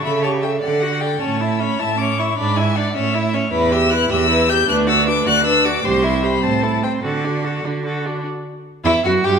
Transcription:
<<
  \new Staff \with { instrumentName = "Violin" } { \time 6/8 \key a \mixolydian \tempo 4. = 103 b''8 a''8 g''8 fis''4 g''8 | a''4 b''8 a''8 d'''8 cis'''8 | b''8 gis''8 fis''8 e''4 r8 | \key e \minor b''8 e'''8 fis'''8 e'''4 g'''8 |
fis'''8 e'''8 d'''8 fis'''8 e'''8 d'''8 | c'''4 b''8 a''4 g''8 | fis''4. r4. | r4. e''8 fis''8 g''8 | }
  \new Staff \with { instrumentName = "Violin" } { \time 6/8 \key a \mixolydian e''8 cis''8 e''8 d''8 fis''8 d''8 | cis''8 e''8 cis''8 e''8 cis''8 e''8 | d''8 e''8 d''8 cis''8 e''8 cis''8 | \key e \minor b'8 e''8 b'8 e''8 b'8 e''8 |
b'8 d''8 b'8 d''8 b'8 d''8 | c''8 e''8 c''8 c''8 a'8 c''8 | a'8 fis'8 a'8 fis'8 a'8 fis'8 | r4. e'8 fis'8 g'8 | }
  \new Staff \with { instrumentName = "Viola" } { \time 6/8 \key a \mixolydian a'8 g'8 a'8 a'8 fis'8 a'8 | cis'8 e'8 cis'8 e'8 cis'8 e'8 | d'8 e'8 d'8 cis'8 e'8 cis'8 | \key e \minor e'8 g'8 e'8 g'8 e'8 g'8 |
d'8 fis'8 d'8 fis'8 d'8 fis'8 | g'8 e'8 g'8 c'8 e'8 c'8 | fis'8 d'8 fis'8 d'8 fis'8 d'8 | r4. e'8 fis'8 g'8 | }
  \new Staff \with { instrumentName = "Cello" } { \clef bass \time 6/8 \key a \mixolydian cis4. d4. | a,4. a,4. | gis,4. a,4. | \key e \minor e,4. e,4. |
d,4. d,4. | c,4. a,4. | d4. d4. | r4. e,8 fis,8 g,8 | }
>>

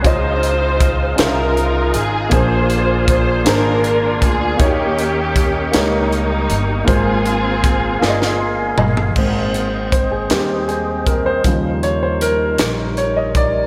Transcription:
<<
  \new Staff \with { instrumentName = "Tonewheel organ" } { \time 6/8 \key aes \major \tempo 4. = 53 << { <ees'' f''>2. | <d'' aes'' c'''>2. | <ees'' g'' des'''>2. | <f'' aes'' c'''>2. |
<c'' ees'' g''>2. | <ees' bes'>2. | } \\ { aes'2. | bes'2.~ | bes'2.~ | bes'2. |
c'2. | g2. | } >> }
  \new Staff \with { instrumentName = "Grand piano" } { \time 6/8 \key aes \major << { r2. | r2. | r2. | r2 c'''16 aes''16 ees''8 |
r4 c''16 aes'16 g'8 aes'8 bes'16 c''16~ | c''8 des''16 c''16 bes'4 des''16 ees''16 d''8 | } \\ { <des des' f' c'' ees''>4. <des' f' c'' fes'' f''>4. | <bes, bes d' aes' c''>4. <bes d' aes' c''>4. | <ees bes ees' ges' g' des''>4. <bes ees' g' des''>4. | <aes, bes f' aes' c''>4. <bes f' aes' d'' ees''>4. |
<aes bes c'>4. <g bes c'>8 r4 | <des f g>2. | } >> }
  \new Staff \with { instrumentName = "String section" } { \time 6/8 \key aes \major << { c''4. bes'4 aes'8 | c''4 c''8 bes'4 aes'8 | g'4. ees'4. | aes'2 r4 |
r2. | r2. | } \\ { <ees' f'>4. <ees' f'>4. | <f' aes'>4. <d' f'>4. | <bes des'>4. <g bes>4. | <c' f'>2 r4 |
r2. | r2. | } >> }
  \new Staff \with { instrumentName = "Upright bass" } { \clef bass \time 6/8 \key aes \major des,4. c,4 aes,,8 | bes,,4. aes,,4 d,8 | ees,4. des,4 g,,8 | aes,,4. g,,4 g,,8 |
aes,,4. ees,4. | ees,4. bes,,4. | }
  \new DrumStaff \with { instrumentName = "Drums" } \drummode { \time 6/8 <hh bd>8 hh8 <hh bd>8 <hh sn>8 hh8 hh8 | <hh bd>8 hh8 <hh bd>8 <hh sn>8 hh8 <hh bd>8 | <hh bd>8 hh8 <hh bd>8 <hh sn>8 hh8 hh8 | <hh bd>8 hh8 <hh bd>8 sn16 sn8. toml16 tomfh16 |
<cymc bd>8 hh8 <hh bd>8 <hh sn>8 hh8 <hh bd>8 | <hh bd>8 hh8 hh8 <hh sn>8 hh8 <hh bd>8 | }
>>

